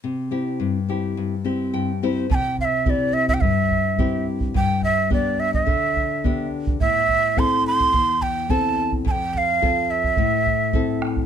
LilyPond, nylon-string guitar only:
\new Staff \with { instrumentName = "Nylon-string guitar" } { \time 2/4 \key c \major \tempo 4 = 106 c8 <c' e' g'>8 g,8 <c' e' g'>8 | g,8 <c' e' g'>8 <g, g''>8 <c' e' g' c''>8 | c4 <c' e' g'>4 | g,4 <c' e' g'>4 |
g,4 <b d' g'>4 | d4 <b d' g'>4 | a,4 <c' e' a'>4 | e,4 <c' e' a'>4 |
f,4 <c' f' a'>4 | a,4 <c' e' a'>4 | }